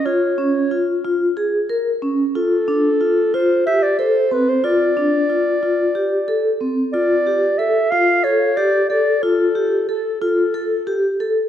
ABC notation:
X:1
M:7/8
L:1/16
Q:1/4=92
K:Flyd
V:1 name="Clarinet"
_d6 z8 | A6 c2 e d c2 B c | d12 z2 | [K:F] d4 e2 f2 ^c2 d2 d2 |
A4 A2 A6 z2 |]
V:2 name="Vibraphone"
F2 _D2 F2 F2 ^G2 _B2 D2 | F2 D2 F2 F2 G2 A2 C2 | F2 D2 F2 F2 G2 A2 C2 | [K:F] F2 G2 A2 F2 A2 G2 A2 |
F2 G2 A2 F2 A2 G2 A2 |]